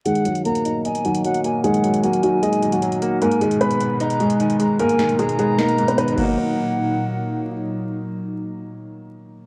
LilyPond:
<<
  \new Staff \with { instrumentName = "Flute" } { \time 4/4 \key ees \minor \tempo 4 = 152 ges''4 bes''4 aes''4 ges''8 aes''8 | ges''4 aes''2~ aes''8 ges''8 | aes''4 ces'''4 bes''4 aes''8 bes''8 | aes''4 bes''2~ bes''8 ges''8~ |
ges''2. r4 | r1 | }
  \new Staff \with { instrumentName = "Grand piano" } { \time 4/4 \key ees \minor <aes aes'>8 <ges ges'>8 <bes bes'>4. <ges ges'>4. | <aes aes'>4 <ges ges'>8 <ges ges'>8 <aes aes'>8. <ges ges'>4~ <ges ges'>16 | <bes bes'>8 <aes aes'>8 <ces' ces''>4. <aes aes'>4. | <bes bes'>4 <aes aes'>8 <aes aes'>8 <bes bes'>8. <ces' ces''>16 <ces' ces''>8 bes8~ |
bes2. r4 | r1 | }
  \new Staff \with { instrumentName = "Ambient pad" } { \clef bass \time 4/4 \key ees \minor << { ees'1~ | ees'1~ | ees'1~ | ees'2.~ ees'8 <bes, ges ees'>8~ |
<bes, ges ees'>1~ | <bes, ges ees'>1 | } \\ { <bes, ges>1~ | <bes, ges>1 | <ces aes>1~ | <ces aes>2.~ <ces aes>8 r8 |
r1 | r1 | } >> }
  \new Staff \with { instrumentName = "Felt piano" } { \clef bass \time 4/4 \key ees \minor ees8 ges8 bes8 ees'8 ees''8 ees8 ges8 bes8 | ees8 ges8 bes8 ees'8 ees''8 ees8 ges8 bes8 | aes,8 ees8 aes8 ces'8 ees'8 aes,8 ees8 aes8 | aes,8 ees8 aes8 ces'8 ees'8 aes,8 ees8 <ees ges bes ees'>8~ |
<ees ges bes ees'>1~ | <ees ges bes ees'>1 | }
  \new DrumStaff \with { instrumentName = "Drums" } \drummode { \time 4/4 hh16 hh16 hh16 hh16 hh16 hh16 hh8 hh16 hh16 hh16 hh16 hh16 hh16 hh8 | hh16 hh16 hh16 hh16 hh16 hh16 hh8 hh16 hh16 hh16 hh16 hh16 hh16 hh8 | hh16 hh16 hh16 hh16 hh16 hh16 hh8 hh16 hh16 hh16 hh16 hh16 hh16 hh8 | hh16 hh16 <hh sn>16 hh16 hh16 hh16 hh8 <hh sn>16 hh16 hh16 hh16 hh16 hh16 <cymc bd>8 |
r4 r4 r4 r4 | r4 r4 r4 r4 | }
>>